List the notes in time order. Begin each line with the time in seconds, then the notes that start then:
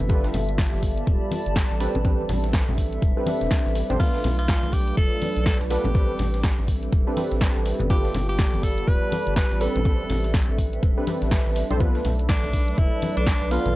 Already playing: G3 A4 E5
0.00 G1
0.09 B3 D4 F4 G4 A4 B4, kick, closed hi-hat, high conga
0.24 snare
0.34 G1, snare, closed hi-hat, open hi-hat, low conga
0.41 D5
0.49 closed hi-hat
0.58 A5, kick, snare, closed hi-hat
0.73 G1, snare, high conga
0.83 kick, closed hi-hat, open hi-hat
0.87 B5
0.98 closed hi-hat
1.07 D1, kick, closed hi-hat
1.31 closed hi-hat, open hi-hat, high conga
1.46 G1, closed hi-hat
1.56 kick, snare, closed hi-hat
1.71 A1, snare
1.80 C4 D4 G4 A4 B4, snare, closed hi-hat, open hi-hat
1.95 A1, closed hi-hat, low conga
2.00 E5
2.05 C4 D4 G4 A4 B4, kick, closed hi-hat, high conga
2.29 A1, snare, closed hi-hat, open hi-hat, low conga
2.44 snare, closed hi-hat
2.53 kick, snare, closed hi-hat
2.68 A1, high conga, low conga
2.78 kick, closed hi-hat, open hi-hat
2.93 closed hi-hat
3.02 E1, kick, closed hi-hat
3.17 C4 D4 G4 A4 B4
3.26 C4 D4 G4 A4 B4, closed hi-hat, open hi-hat, high conga
3.41 E1, snare, closed hi-hat
3.51 kick, snare, closed hi-hat
3.66 A1, snare
3.75 snare, closed hi-hat, open hi-hat
3.90 A1 C4 D4 G4 A4 C5, closed hi-hat, low conga
4.00 A3 B3 F4 B4, kick, closed hi-hat, crash, high conga
4.15 D5, snare
4.24 B1, snare, closed hi-hat, open hi-hat, low conga
4.31 F#3
4.39 F4, closed hi-hat
4.48 kick, snare, closed hi-hat
4.61 B1 B4, snare, high conga
4.73 G4, kick, closed hi-hat, open hi-hat
4.88 closed hi-hat
4.97 F1 A4, kick, closed hi-hat
5.22 closed hi-hat, open hi-hat, high conga
5.36 B1, closed hi-hat
5.46 A4, kick, snare, closed hi-hat
5.61 B1, snare
5.70 B3 D4 F4 G4 A4 B4, snare, closed hi-hat, open hi-hat
5.84 A1, closed hi-hat, low conga
5.95 G3 C4 D4 G4 A4 B4, kick, closed hi-hat, high conga
6.19 A1, snare, closed hi-hat, open hi-hat, low conga
6.27 E5
6.34 snare, closed hi-hat
6.43 kick, snare, closed hi-hat
6.58 A1, high conga
6.68 kick, closed hi-hat, open hi-hat
6.83 closed hi-hat
6.92 E1, kick, closed hi-hat
7.07 C4 D4 G4 A4 B4
7.17 C4 D4 G4 A4 B4, closed hi-hat, open hi-hat, high conga
7.31 A1, snare, closed hi-hat
7.41 C4 D4 G4 A4 B4, kick, snare, closed hi-hat
7.56 A1, snare
7.66 snare, closed hi-hat, open hi-hat
7.80 G1, closed hi-hat, low conga
7.90 B3 D4 F4 G4 A4 B4, kick, closed hi-hat, high conga
7.97 D5
8.05 B5, snare
8.14 G1, snare, closed hi-hat, open hi-hat, low conga
8.29 G4, closed hi-hat
8.39 kick, snare, closed hi-hat
8.51 G1 A5, snare, high conga
8.63 A4, kick, closed hi-hat, open hi-hat
8.78 closed hi-hat
8.88 D1 B4, kick, closed hi-hat
9.12 closed hi-hat, open hi-hat, high conga
9.27 G1, closed hi-hat
9.36 B4, kick, snare, closed hi-hat
9.51 A1, snare
9.61 C4 D4 G4 A4 B4, snare, closed hi-hat, open hi-hat
9.68 E5
9.76 A1, closed hi-hat, low conga
9.85 C4 D4 G4 A4 B4, kick, closed hi-hat, high conga
10.10 A1, snare, closed hi-hat, open hi-hat, low conga
10.24 snare, closed hi-hat
10.34 kick, snare, closed hi-hat
10.49 A1, high conga
10.58 kick, closed hi-hat, open hi-hat
10.73 closed hi-hat
10.83 E1, kick, closed hi-hat
10.97 C4 D4 G4 A4 B4
11.07 C4 D4 G4 A4 B4, closed hi-hat, open hi-hat, high conga
11.22 A1, snare, closed hi-hat
11.31 kick, snare, closed hi-hat
11.46 A1, snare
11.56 snare, closed hi-hat, open hi-hat
11.71 B1 C4 D4 G4 A4 C5, closed hi-hat, low conga
11.80 A3 B3 D4 F4 A4 B4, kick, closed hi-hat, high conga
11.85 F#3
11.95 snare
12.04 B1 D5, snare, closed hi-hat, open hi-hat, low conga
12.19 B4, closed hi-hat
12.29 D4, kick, snare, closed hi-hat
12.44 B1, snare, high conga
12.53 kick, closed hi-hat, open hi-hat
12.68 closed hi-hat
12.78 F1 E4, kick, closed hi-hat
13.02 closed hi-hat, open hi-hat, high conga
13.17 B1 D4, closed hi-hat
13.26 kick, snare, closed hi-hat
13.41 B1, snare
13.51 B3 D4 F4 A4 B4, snare, closed hi-hat, open hi-hat
13.66 A1, closed hi-hat, low conga